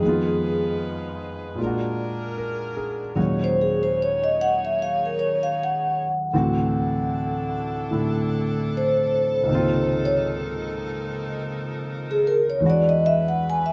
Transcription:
0.00 1.57 F2 soft
0.00 1.58 D#3 soft
0.00 1.57 F3 medium
0.00 1.59 G#3 soft
0.00 1.57 D#4 medium
0.00 0.71 G#4 medium
0.00 1.55 G#4 medium
0.00 1.57 B4 medium
0.06 1.61 B3 soft
0.06 1.57 F4 soft
1.55 3.14 A#2 soft
1.55 3.17 F4 soft
1.60 3.15 G#3 soft
1.60 3.17 D4 medium
1.60 3.19 D4 soft
1.60 3.14 G#4 medium
1.60 3.16 A#4 medium
1.67 3.15 F#4 soft
2.38 3.00 A#4 soft
2.77 3.33 G#4 soft
3.15 6.32 D#2 soft
3.15 6.32 A#2 soft
3.15 6.33 F#3 soft
3.15 6.33 G#3 soft
3.15 6.33 C#4 soft
3.15 6.16 D#4 medium
3.15 6.33 F#4 soft
3.15 6.16 G#4 medium
3.15 6.16 C#5 medium
3.44 3.69 C5 medium
3.61 3.78 G#4 medium
3.83 3.96 C5 medium
4.02 4.25 C#5 medium
4.24 4.48 D#5 medium
4.41 4.58 F#5 medium
4.65 4.76 E5 medium
4.82 5.04 F5 medium
5.05 5.29 A#4 soft
5.19 5.36 C#5 medium
5.43 5.55 F5 medium
5.64 7.91 F#5 medium
6.33 9.48 D2 soft
6.33 7.89 A2 soft
6.33 9.49 E3 soft
6.33 9.49 C4 soft
6.33 9.45 D4 medium
6.33 9.45 E4 medium
6.33 9.49 F#4 medium
6.33 12.58 A4 medium
7.91 9.48 A2 soft
7.91 9.48 D3 soft
7.91 9.49 A3 soft
7.91 9.49 E4 soft
8.77 10.00 C5 medium
9.43 12.60 C#2 medium
9.43 12.61 G#2 medium
9.48 12.62 D#3 soft
9.48 12.60 F3 medium
9.48 12.62 A#3 soft
9.48 12.60 D#4 medium
9.48 12.60 A#4 medium
9.52 12.64 C3 soft
9.52 12.65 F4 medium
10.05 10.20 C#5 medium
12.11 12.35 G#4 medium
12.27 12.44 A#4 medium
12.50 12.62 C#5 medium
12.60 13.73 E2 medium
12.60 13.73 E3 soft
12.60 13.73 E3 medium
12.60 13.73 G#3 soft
12.60 13.73 D4 medium
12.65 13.73 D4 soft
12.65 13.73 F#4 medium
12.65 13.73 G#4 medium
12.65 13.73 B4 medium
12.70 12.91 D5 medium
12.89 13.14 D#5 medium
13.06 13.23 E5 medium
13.28 13.41 F#5 medium
13.50 13.71 G#5 medium
13.66 13.73 E5 medium

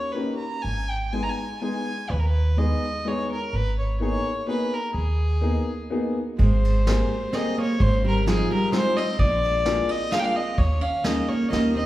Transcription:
0.00 0.13 C#5 medium
0.12 0.41 A#3 soft
0.12 0.41 C#4 soft
0.12 0.37 B4 medium
0.16 0.41 D#4 soft
0.16 0.42 G4 soft
0.38 0.63 A#5 medium
0.61 1.28 G#1 medium
0.61 0.91 G#5 loud
0.89 1.14 G5 medium
1.13 1.39 G#3 medium
1.13 1.39 B3 soft
1.13 1.39 D#4 soft
1.13 1.40 G#4 medium
1.13 1.24 G#5 medium
1.23 1.30 A#5 medium
1.29 1.61 G#5 medium
1.61 1.87 G#3 medium
1.61 1.87 B3 soft
1.61 1.88 D#4 soft
1.61 1.88 G#4 medium
1.61 2.12 G#5 medium
2.10 2.72 D#2 medium
2.10 2.21 B4 medium
2.19 2.27 A#4 medium
2.26 2.59 B4 medium
2.57 2.83 G#3 soft
2.57 2.83 B3 soft
2.57 2.84 D#4 soft
2.57 2.84 G#4 medium
2.57 3.09 D#5 medium
3.05 3.31 G#3 soft
3.05 3.31 B3 medium
3.05 3.32 D#4 soft
3.05 3.32 G#4 medium
3.05 3.31 C#5 medium
3.32 3.56 A#4 medium
3.53 4.15 G#1 medium
3.53 3.78 B4 medium
3.79 3.99 C#5 medium
4.00 4.26 A#3 medium
4.00 4.26 B3 soft
4.00 4.26 D#4 medium
4.00 4.27 G#4 medium
4.00 4.45 C#5 medium
4.47 4.73 A#3 medium
4.47 4.73 B3 soft
4.47 4.73 D#4 soft
4.47 4.74 G#4 medium
4.47 4.75 B4 medium
4.74 4.94 A#4 medium
4.94 5.57 D#2 medium
4.94 6.13 G#4 medium
5.41 5.68 A#3 medium
5.41 5.68 B3 soft
5.41 5.68 D#4 medium
5.41 5.69 G#4 medium
5.90 6.17 A#3 medium
5.90 6.17 B3 medium
5.90 6.17 D#4 medium
5.90 6.18 G#4 medium
6.39 7.01 G#1 medium
6.39 7.29 G#3 medium
6.39 7.36 C5 medium
6.39 kick medium
6.39 ride soft
6.65 ride soft
6.87 7.12 A#3 medium
6.87 7.12 C4 medium
6.87 7.12 G4 soft
6.87 7.13 G#4 medium
6.87 snare medium
6.87 ride soft
7.33 7.58 A#3 medium
7.33 7.58 C4 medium
7.33 7.59 C4 medium
7.33 7.59 G4 soft
7.33 7.59 G#4 medium
7.33 7.59 D#5 medium
7.33 snare medium
7.33 ride soft
7.58 7.79 A#3 medium
7.58 7.83 C#5 medium
7.79 8.41 G#1 medium
7.79 8.04 G#3 medium
7.79 8.05 C5 loud
7.79 kick medium
7.79 ride soft
8.05 8.25 G3 medium
8.05 8.27 A#4 medium
8.26 8.50 F3 medium
8.26 8.51 C4 medium
8.26 8.52 D#4 medium
8.26 8.52 F4 medium
8.26 8.52 G#4 medium
8.26 8.51 G#4 medium
8.26 snare medium
8.26 ride soft
8.51 8.71 G3 medium
8.51 8.72 A#4 medium
8.72 8.98 G#3 medium
8.72 8.97 C4 medium
8.72 8.97 D#4 medium
8.72 8.98 F4 medium
8.72 8.98 G#4 medium
8.72 8.98 C5 loud
8.72 snare medium
8.72 ride soft
8.97 9.19 C4 medium
8.97 9.21 D#5 loud
9.19 9.79 A#1 medium
9.19 9.89 A#3 medium
9.19 9.92 D5 medium
9.19 kick medium
9.19 ride soft
9.44 ride soft
9.65 9.90 A#3 medium
9.65 9.90 D4 medium
9.65 9.91 F4 medium
9.65 9.91 G#4 medium
9.65 snare medium
9.65 ride soft
9.89 10.11 C4 medium
9.89 10.14 D#5 loud
10.11 10.37 A#3 medium
10.11 10.18 D4 medium
10.11 10.37 D4 medium
10.11 10.37 F4 medium
10.11 10.37 G#4 medium
10.11 10.21 F5 loud
10.11 snare medium
10.11 ride soft
10.18 10.22 D#4 medium
10.18 10.26 G5 loud
10.22 10.34 D4 loud
10.22 10.38 F5 medium
10.34 10.57 C4 medium
10.34 10.60 D#5 medium
10.57 11.19 D#2 medium
10.57 10.81 A#3 medium
10.57 10.83 C#5 medium
10.57 kick medium
10.57 ride soft
10.81 11.04 C#4 medium
10.81 11.05 F5 medium
11.04 11.29 A#3 medium
11.04 11.28 A#3 medium
11.04 11.30 C#4 medium
11.04 11.30 D#4 medium
11.04 11.30 G#4 medium
11.04 11.30 D#5 medium
11.04 snare medium
11.04 ride soft
11.29 11.49 A#3 medium
11.29 11.50 C#5 medium
11.50 11.83 D#2 medium
11.50 11.74 A#3 medium
11.50 11.77 A#3 soft
11.50 11.77 C#4 medium
11.50 11.77 D#4 medium
11.50 11.78 G4 medium
11.50 11.75 D#5 medium
11.50 snare medium
11.50 ride soft
11.76 11.86 C4 medium
11.76 11.86 D#5 medium

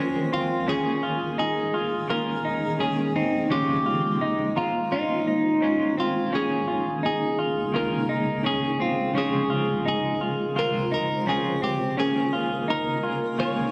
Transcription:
0.00 6.29 D#3 medium
0.00 0.66 F3 medium
0.00 0.63 G#3 medium
0.00 0.67 G#3 medium
0.00 0.65 A#3 medium
0.00 0.68 C4 medium
0.00 0.32 C#4 medium
0.00 0.65 F4 medium
0.00 0.69 G#4 medium
0.00 0.65 A#4 medium
0.00 0.33 C5 loud
0.33 0.67 C4 medium
0.33 0.69 F4 medium
0.33 0.99 C6 medium
0.67 1.73 D#3 medium
0.67 4.88 G#3 medium
0.67 1.76 A#3 medium
0.67 6.29 A#3 medium
0.67 1.03 C#4 loud
0.67 1.75 C#4 medium
0.67 3.48 D#4 medium
0.67 3.47 G#4 medium
0.67 1.38 G#4 loud
0.67 1.73 G#4 medium
1.03 1.38 F4 medium
1.38 1.74 D#4 loud
1.38 2.10 G#4 medium
1.73 2.08 A#3 soft
1.73 2.09 C#4 soft
1.73 2.08 F4 medium
1.73 2.09 G#4 soft
2.08 2.78 D#3 medium
2.08 2.80 A#3 medium
2.08 2.81 C#4 medium
2.08 2.45 F4 medium
2.08 2.82 G#4 medium
2.08 2.80 A#4 loud
2.45 2.80 D#4 medium
2.79 3.50 D#3 medium
2.79 3.50 A#3 medium
2.79 3.15 C#4 medium
2.79 3.51 C#4 medium
2.79 3.16 G#4 medium
2.79 3.52 G#4 medium
3.15 3.50 C4 medium
3.15 3.52 D#4 medium
3.49 4.56 C#3 medium
3.49 4.56 F3 medium
3.49 4.58 G#3 medium
3.49 4.56 C4 medium
3.49 3.86 C#4 medium
3.49 6.30 F4 medium
3.49 4.54 F4 medium
3.49 4.53 G4 loud
3.86 4.21 F4 medium
4.21 4.56 D#4 medium
4.55 4.91 G#3 soft
4.55 4.92 C4 soft
4.55 4.91 F4 soft
4.55 4.91 F4 medium
4.55 4.93 F4 medium
4.55 5.23 A#5 medium
4.91 5.60 D#3 medium
4.91 5.62 G#3 medium
4.91 5.63 C#4 medium
4.91 5.94 D#4 medium
4.91 5.27 F4 medium
4.91 5.63 F4 medium
5.27 5.62 D#4 medium
5.61 6.30 D#3 medium
5.61 6.32 G#3 medium
5.61 5.97 C#4 medium
5.61 6.33 C#4 medium
5.61 6.34 F4 medium
5.97 6.32 C4 medium
5.97 6.35 F4 medium
6.30 11.93 C#3 medium
6.30 7.71 D#3 medium
6.30 11.93 G#3 medium
6.30 7.73 A#3 medium
6.30 9.12 A#3 medium
6.30 6.68 C#4 loud
6.30 9.12 D#4 medium
6.30 9.12 G#4 medium
6.34 7.74 C#4 medium
6.34 7.05 G#4 loud
6.34 7.75 G#4 medium
6.68 7.03 F4 medium
7.03 7.38 D#4 medium
7.03 7.76 G#4 medium
7.39 7.73 F4 medium
7.72 8.42 D#3 medium
7.72 8.44 A#3 medium
7.72 8.45 C#4 medium
7.72 8.09 F4 medium
7.72 8.46 G#4 medium
7.72 8.46 A#4 loud
8.09 8.44 D#4 medium
8.43 9.14 D#3 medium
8.43 9.16 A#3 medium
8.43 8.79 C#4 medium
8.43 9.17 C#4 medium
8.43 9.18 G#4 medium
8.43 8.82 G#4 medium
8.80 9.14 C4 medium
8.80 9.17 F4 medium
9.13 10.55 C#3 medium
9.13 10.54 F3 medium
9.13 10.56 G#3 medium
9.13 9.50 C#4 loud
9.13 11.94 F4 medium
9.13 13.72 A#4 medium
9.13 11.94 C5 medium
9.17 10.57 C4 medium
9.17 10.57 F4 medium
9.17 9.87 G#4 loud
9.50 9.85 F4 medium
9.86 10.21 D#4 medium
9.86 10.58 G#4 medium
10.21 10.55 F4 medium
10.55 11.25 F3 medium
10.55 11.27 G#3 medium
10.55 11.27 C4 medium
10.55 10.91 F4 medium
10.55 11.28 F4 medium
10.55 10.93 A#4 loud
10.92 11.26 D#4 medium
10.92 11.29 A#4 loud
11.26 11.97 F3 medium
11.26 11.98 G#3 medium
11.26 11.98 C4 medium
11.26 11.62 C#4 medium
11.26 11.99 F4 medium
11.26 11.63 G#4 medium
11.62 11.97 C4 medium
11.62 11.99 G4 medium
11.96 13.72 C#3 medium
11.96 13.03 D#3 medium
11.96 13.72 G#3 medium
11.96 13.72 A#3 medium
11.96 13.06 A#3 medium
11.96 12.33 C#4 medium
11.96 13.04 C#4 medium
11.96 13.72 D#4 medium
11.96 13.02 G#4 medium
11.96 12.70 G#4 loud
12.33 12.68 F4 medium
12.68 13.03 D#4 medium
12.68 13.39 A#4 loud
13.03 13.38 A#3 soft
13.03 13.39 C#4 soft
13.03 13.37 F4 medium
13.03 13.38 G#4 soft
13.37 13.72 D#3 medium
13.37 13.72 A#3 medium
13.37 13.72 C#4 medium
13.37 13.72 F4 medium
13.37 13.72 G#4 medium
13.37 13.72 C#5 loud

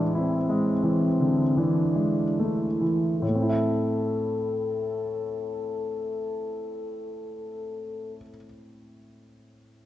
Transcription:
0.00 3.18 A2 soft
0.00 0.37 E3 soft
0.00 0.49 G#3 soft
0.00 0.17 D4 medium
0.00 0.15 E4 soft
0.15 1.56 C4 medium
0.15 0.71 E4 soft
0.49 1.06 G#3 soft
0.83 1.43 E3 soft
1.20 1.58 D3 soft
1.57 2.23 E3 soft
1.57 2.42 D4 medium
1.96 2.65 G#3 soft
2.40 2.82 A3 soft
2.40 3.22 E4 soft
2.81 3.21 E3 soft
3.20 8.16 A2 soft
3.20 8.14 A4 soft
3.28 8.22 A3 soft
3.35 8.29 C4 soft
3.42 8.36 E4 soft
3.49 8.43 E5 soft

